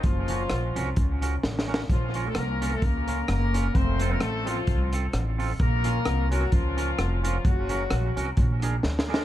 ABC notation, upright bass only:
X:1
M:4/4
L:1/8
Q:"Swing" 1/4=130
K:Bbm
V:1 name="Upright bass" clef=bass
G,,,2 B,,, C,, D,,2 =A,,,2 | B,,,2 C,,2 D,,2 G,,,2 | F,,,2 =A,,,2 C,,2 A,,,2 | B,,,2 C,,2 D,,2 F,,,2 |
G,,,2 B,,, C,, B,,,2 =D,,2 |]